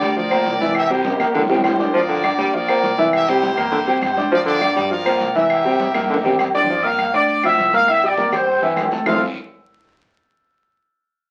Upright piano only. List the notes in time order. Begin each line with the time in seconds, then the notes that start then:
Already playing: D4 D5 D6
0.16 F3 F4 F5
0.32 A#3 A#4 A#5
0.61 E3 E4 E5
0.90 G3 G4 G5
1.20 A#3 A#4 A#5
1.49 G3 G4 G5
1.79 D4 D5 D6
1.94 F3 F4 F5
2.24 D4 D5 D6
2.54 F3 F4 F5
2.69 A#3 A#4 A#5
2.98 E3 E4 E5
3.29 G3 G4 G5
3.57 A#3 A#4 A#5
3.87 G3 G4 G5
4.17 D4 D5 D6
4.32 F3 F4 F5
4.61 D4 D5 D6
4.90 F3 F4 F5
5.05 A#3 A#4 A#5
5.36 E3 E4 E5
5.65 G3 G4 G5
5.94 A#3 A#4 A#5
6.24 G3 G4 G5
6.54 D4 D5 D6
6.70 F3 F4 F5
6.84 A#3 A#4 A#5
7.14 D4 D5 D6
7.44 F3 F4 F5
7.74 A#3 A#4 A#5
7.88 E4 E5 E6
8.03 G3 G4 G5
8.18 A#3 A#4 A#5
8.32 G3 G4 G5
8.62 E3 E4 E5
8.92 A3 A4 A5
9.06 F3 C4 E4 F4 A4 C5